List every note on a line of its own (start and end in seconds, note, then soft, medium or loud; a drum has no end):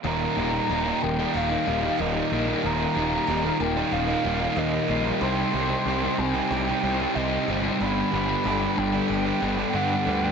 0.04 0.25 D#1 loud
0.04 0.36 D#2 medium
0.04 0.69 D#2 medium
0.04 0.36 A#2 medium
0.04 0.68 A#2 medium
0.04 0.38 D#3 loud
0.04 0.36 D#3 loud
0.04 0.37 G3 medium
0.04 0.38 A#3 medium
0.04 7.77 D#4 medium
0.04 0.40 D#4 loud
0.04 5.18 G4 medium
0.04 5.19 A#4 medium
0.04 2.61 G5 medium
0.04 1.04 A#5 loud
0.36 0.58 D#1 medium
0.36 0.69 D#2 medium
0.36 0.53 A#2 medium
0.36 0.70 D#3 medium
0.36 0.52 D#3 medium
0.36 0.70 G3 medium
0.36 0.71 A#3 medium
0.36 0.72 D#4 medium
0.52 0.69 A#2 medium
0.52 0.70 D#3 medium
0.69 0.90 D#1 medium
0.69 1.01 D#2 loud
0.69 1.98 D#2 medium
0.69 1.18 A#2 medium
0.69 0.86 A#2 loud
0.69 0.89 D#3 medium
0.69 0.84 D#3 loud
0.69 0.88 G3 loud
0.69 0.88 A#3 medium
0.69 0.87 D#4 loud
0.85 1.01 A#2 medium
0.85 1.02 D#3 medium
0.85 1.03 A#3 medium
0.85 1.03 D#4 medium
0.89 1.03 D#3 medium
0.89 1.03 G3 medium
1.01 1.24 D#1 medium
1.01 1.50 D#2 medium
1.01 1.19 A#2 medium
1.01 1.17 D#3 medium
1.01 1.96 A#3 medium
1.01 1.37 G5 medium
1.01 muted overdriven electric guitar stroke medium
1.18 1.65 A#2 medium
1.18 1.66 D#3 medium
1.18 1.52 G3 medium
1.18 1.50 A#3 medium
1.18 1.50 D#4 medium
1.22 1.52 D#3 medium
1.34 1.55 D#1 medium
1.34 3.27 D#4 medium
1.34 2.01 F5 medium
1.50 1.65 D#3 medium
1.50 1.68 G3 medium
1.50 1.67 A#3 medium
1.50 1.70 D#4 medium
1.66 1.88 D#1 loud
1.66 1.98 D#2 medium
1.66 1.83 A#2 medium
1.66 1.85 D#3 medium
1.66 1.81 D#3 medium
1.66 1.85 G3 medium
1.66 1.83 A#3 medium
1.70 1.82 D#4 medium
1.82 1.99 A#2 medium
1.82 2.00 D#3 medium
1.82 1.99 D#3 medium
1.82 2.00 G3 medium
1.82 1.99 A#3 medium
1.82 2.01 D#4 medium
1.98 2.20 D#1 medium
1.98 2.47 D#2 medium
1.98 2.30 D#2 medium
1.98 2.47 A#2 loud
1.98 2.31 A#2 loud
1.98 2.17 D#3 loud
1.98 2.32 D#3 loud
1.98 2.17 G3 medium
1.98 2.15 A#3 loud
1.98 2.14 D#4 loud
1.98 2.47 D#5 medium
2.15 2.29 D#3 medium
2.15 2.31 G3 medium
2.15 2.32 A#3 medium
2.15 2.34 D#4 medium
2.30 2.52 A#1 medium
2.30 2.62 D#2 medium
2.30 2.48 A#2 medium
2.30 2.63 D#3 medium
2.30 2.46 D#3 medium
2.30 2.64 G3 medium
2.30 2.64 A#3 medium
2.30 2.65 D#4 medium
2.47 2.63 A#2 medium
2.47 2.63 D#3 medium
2.63 2.85 D#1 loud
2.63 3.27 D#2 medium
2.63 2.94 D#2 medium
2.63 3.27 A#2 medium
2.63 2.95 A#2 medium
2.63 2.94 D#3 medium
2.63 2.95 D#3 loud
2.63 2.96 G3 loud
2.63 2.96 A#3 loud
2.63 2.98 D#4 medium
2.63 5.19 F5 medium
2.63 3.63 A#5 loud
2.95 3.17 D#1 medium
2.95 3.26 D#2 medium
2.95 3.12 A#2 medium
2.95 3.28 D#3 medium
2.95 3.10 D#3 medium
2.95 3.29 G3 medium
2.95 3.29 A#3 medium
2.95 3.30 D#4 medium
3.11 3.27 A#2 medium
3.11 3.27 D#3 medium
3.27 3.49 D#1 loud
3.27 3.57 D#2 medium
3.27 3.76 D#2 loud
3.27 3.43 A#2 loud
3.27 3.76 A#2 medium
3.27 3.42 D#3 loud
3.27 3.45 D#3 loud
3.27 3.45 G3 loud
3.27 3.43 A#3 loud
3.31 3.43 D#4 loud
3.43 3.59 A#2 medium
3.43 3.59 D#3 medium
3.43 3.61 G3 medium
3.43 3.60 A#3 medium
3.43 3.61 D#4 medium
3.59 3.81 D#1 medium
3.59 4.08 D#2 medium
3.59 3.75 A#2 medium
3.59 3.73 D#3 medium
3.59 4.55 A#3 medium
3.59 3.93 G5 medium
3.59 muted overdriven electric guitar stroke medium
3.74 4.23 A#2 medium
3.74 4.24 D#3 medium
3.74 4.08 A#3 medium
3.74 4.07 D#4 medium
3.78 4.10 D#3 medium
3.78 4.10 G3 medium
3.92 4.13 D#1 medium
3.92 5.21 D#4 medium
3.92 4.59 F5 loud
4.08 4.23 D#3 medium
4.08 4.25 G3 medium
4.08 4.25 A#3 medium
4.08 4.26 D#4 medium
4.23 4.45 D#1 medium
4.23 4.55 D#2 medium
4.23 4.40 A#2 medium
4.23 4.42 D#3 medium
4.23 4.39 D#3 medium
4.23 4.42 G3 medium
4.23 4.40 A#3 medium
4.28 4.38 D#4 medium
4.40 4.56 A#2 medium
4.40 4.56 D#3 medium
4.40 4.55 D#3 medium
4.40 4.58 G3 medium
4.40 4.57 A#3 medium
4.40 4.58 D#4 medium
4.56 5.05 D#2 loud
4.56 4.87 D#2 medium
4.56 4.77 D#2 loud
4.56 5.05 A#2 medium
4.56 4.88 A#2 medium
4.56 4.75 D#3 loud
4.56 4.89 D#3 loud
4.56 4.74 G3 loud
4.56 4.73 A#3 loud
4.56 4.72 D#4 loud
4.56 5.06 D#5 loud
4.73 4.87 D#3 medium
4.73 4.89 G3 medium
4.73 4.89 A#3 medium
4.73 4.90 D#4 medium
4.88 5.10 A#1 medium
4.88 5.19 D#2 medium
4.88 5.05 A#2 medium
4.88 5.19 D#3 medium
4.88 5.03 D#3 medium
4.88 5.22 G3 medium
4.88 5.20 A#3 medium
4.88 5.20 D#4 medium
5.04 5.20 A#2 medium
5.04 5.19 D#3 medium
5.20 5.42 C2 loud
5.20 5.52 C3 medium
5.20 5.84 C3 medium
5.20 7.78 G3 medium
5.20 5.53 G3 medium
5.20 5.54 C4 medium
5.20 5.53 C4 medium
5.20 5.54 D#4 medium
5.20 7.77 C5 medium
5.20 6.20 C6 loud
5.25 5.56 G4 loud
5.53 5.75 C2 medium
5.53 5.85 C3 medium
5.53 5.86 G3 medium
5.53 5.70 G3 medium
5.53 5.86 C4 medium
5.53 5.68 C4 medium
5.53 5.87 D#4 medium
5.53 5.89 G4 medium
5.69 5.87 G3 medium
5.69 5.87 C4 medium
5.86 6.07 C2 medium
5.86 6.34 C3 medium
5.86 6.17 C3 loud
5.86 6.19 G3 loud
5.86 6.04 G3 loud
5.86 6.04 C4 medium
5.86 6.01 C4 loud
5.86 6.02 D#4 loud
5.86 6.01 G4 loud
6.02 6.19 G3 medium
6.02 6.19 C4 medium
6.02 6.18 C4 medium
6.02 6.18 D#4 medium
6.02 6.19 G4 medium
6.18 6.39 C2 medium
6.18 6.67 C3 medium
6.18 6.36 G3 medium
6.18 6.34 C4 medium
6.18 7.14 D#4 medium
6.18 6.52 G#5 loud
6.18 muted overdriven electric guitar stroke medium
6.34 6.84 G3 medium
6.34 6.84 C4 medium
6.34 6.69 C4 medium
6.34 6.68 D#4 medium
6.34 6.67 G4 medium
6.51 6.71 C2 medium
6.51 8.44 G4 medium
6.51 7.16 G5 loud
6.67 6.83 C4 medium
6.67 6.84 D#4 medium
6.67 6.85 G4 medium
6.83 7.04 C2 medium
6.83 7.15 C3 medium
6.83 7.16 G3 medium
6.83 7.00 G3 medium
6.83 7.00 C4 medium
6.83 6.98 C4 medium
6.83 6.99 D#4 medium
6.83 6.98 G4 medium
6.98 7.16 G3 medium
6.98 7.16 C4 medium
6.98 7.16 D#4 medium
6.98 7.18 G4 medium
7.15 7.36 C2 medium
7.15 7.64 C3 loud
7.15 7.46 C3 medium
7.15 7.48 G3 loud
7.15 7.33 C4 medium
7.15 7.48 C4 loud
7.15 7.32 D#4 loud
7.15 7.31 G4 loud
7.15 7.64 D#5 medium
7.31 7.48 C4 medium
7.31 7.49 D#4 medium
7.31 7.50 G4 medium
7.48 7.69 G1 medium
7.48 7.78 C3 medium
7.48 7.81 G3 medium
7.48 7.65 G3 medium
7.48 7.79 C4 medium
7.48 7.62 C4 loud
7.48 7.79 D#4 medium
7.48 7.83 G4 medium
7.63 7.81 G3 medium
7.63 7.78 C4 medium
7.79 8.01 G1 loud
7.79 8.10 G2 loud
7.79 8.44 G2 medium
7.79 8.11 D3 medium
7.79 8.45 D3 loud
7.79 8.12 G3 loud
7.79 8.12 B3 medium
7.79 10.32 D4 medium
7.79 8.13 D4 loud
7.79 10.32 A4 medium
7.79 10.32 B4 medium
7.79 8.79 B5 loud
7.83 8.15 G4 loud
8.11 8.34 G1 loud
8.11 8.43 G2 medium
8.11 8.28 D3 medium
8.11 8.27 G3 medium
8.11 8.46 G3 medium
8.11 8.46 B3 medium
8.11 8.46 D4 medium
8.16 8.48 G4 medium
8.27 8.44 D3 medium
8.27 8.45 G3 medium
8.44 8.66 G1 loud
8.44 8.75 G2 medium
8.44 8.93 G2 medium
8.44 8.60 D3 loud
8.44 8.94 D3 medium
8.44 8.59 G3 loud
8.44 8.65 G3 loud
8.44 8.63 B3 loud
8.44 8.62 D4 loud
8.48 8.62 G4 loud
8.60 8.76 D3 medium
8.60 8.77 G3 medium
8.60 8.77 D4 medium
8.60 8.78 G4 medium
8.65 8.77 G3 medium
8.65 8.77 B3 medium
8.76 8.98 G1 medium
8.76 9.25 G2 medium
8.76 8.92 D3 medium
8.76 8.91 G3 medium
8.76 9.72 D4 medium
8.76 9.08 G5 loud
8.76 muted overdriven electric guitar stroke soft
8.92 9.41 D3 medium
8.92 9.42 G3 medium
8.92 9.27 B3 medium
8.92 9.26 D4 medium
8.92 9.25 G4 medium
8.96 9.28 G3 medium
9.08 9.30 G1 medium
9.08 10.32 G4 medium
9.08 9.76 G5 loud
9.26 9.41 G3 medium
9.26 9.41 B3 medium
9.26 9.42 D4 medium
9.26 9.43 G4 medium
9.41 9.63 G1 medium
9.41 9.72 G2 medium
9.41 9.58 D3 medium
9.41 9.61 G3 medium
9.41 9.56 G3 medium
9.41 9.59 B3 medium
9.41 9.58 D4 medium
9.41 9.58 G4 medium
9.57 9.73 D3 medium
9.57 9.75 G3 medium
9.57 9.75 B3 medium
9.57 9.75 D4 medium
9.57 9.77 G4 medium
9.62 9.75 G3 medium
9.73 10.05 G2 medium
9.73 10.22 G2 medium
9.73 9.95 G2 medium
9.73 10.06 D3 loud
9.73 10.23 D3 medium
9.73 9.94 G3 loud
9.73 10.08 G3 medium
9.73 9.92 B3 medium
9.73 9.91 D4 loud
9.73 9.91 G4 loud
9.73 10.25 F#5 medium
9.91 10.05 G3 medium
9.91 10.06 B3 medium
9.91 10.07 D4 medium
9.91 10.09 G4 medium
10.06 10.27 D2 medium
10.06 10.32 G2 medium
10.06 10.23 D3 medium
10.06 10.32 G3 medium
10.06 10.22 G3 medium
10.06 10.32 B3 medium
10.06 10.32 D4 medium
10.06 10.32 G4 medium
10.22 10.32 D3 medium
10.22 10.32 G3 medium
10.22 10.32 G5 loud